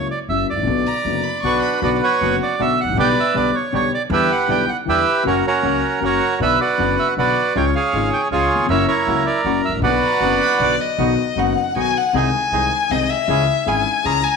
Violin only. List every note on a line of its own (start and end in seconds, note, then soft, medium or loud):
0.86 1.25 A#5 medium
1.24 1.42 B5 medium
1.43 1.61 C#6 medium
1.63 1.81 B5 medium
10.02 10.38 A#5 medium
10.39 10.58 B5 medium
10.61 10.82 D5 medium
10.80 11.41 D#5 medium
11.39 11.77 F#5 medium
11.78 11.99 G#5 medium
11.98 12.19 F#5 medium
12.17 12.93 G#5 medium
12.91 13.12 D#5 medium
13.10 13.70 E5 medium
13.69 14.07 G#5 medium
14.06 14.25 A#5 loud
14.24 14.37 G#5 medium